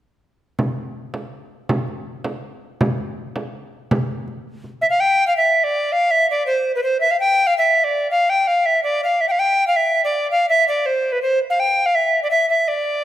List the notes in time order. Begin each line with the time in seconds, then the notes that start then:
0.59 frame drum
1.14 frame drum
1.69 frame drum
1.88 frame drum
2.24 frame drum
2.81 frame drum
2.98 frame drum
3.36 frame drum
3.91 frame drum
4.28 frame drum
4.64 frame drum
4.81 E5, frame drum
4.90 F5
5.00 G5
5.27 F5
5.37 E5
5.64 D5
5.92 F5
6.11 E5
6.31 D5
6.46 C5
6.75 B4
6.83 C5
7.00 E5
7.11 F5
7.20 G5
7.47 F5
7.58 E5
7.84 D5
8.11 F5
8.30 G5
8.47 F5
8.66 E5
8.84 D5
9.04 F5
9.21 E5
9.29 F5 G5
9.39 G5
9.67 F5
9.76 E5
10.04 D5
10.31 F5
10.49 E5
10.68 D5
10.86 C5
11.12 B4
11.22 C5
11.50 F5
11.60 G5
11.86 F5
11.95 E5
12.23 D5
12.31 E5
12.50 E5
12.68 D5